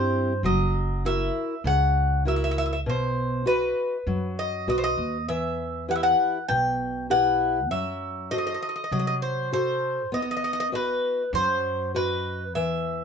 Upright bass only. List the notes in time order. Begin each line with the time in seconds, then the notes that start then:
Already playing: G2
0.43 F#1
1.64 C#2
2.87 B1
4.07 F#2
4.67 B1
4.97 D#2
5.28 E2
6.49 B1
7.70 F#2
8.91 C3
10.12 B1
11.33 F#2
12.54 E2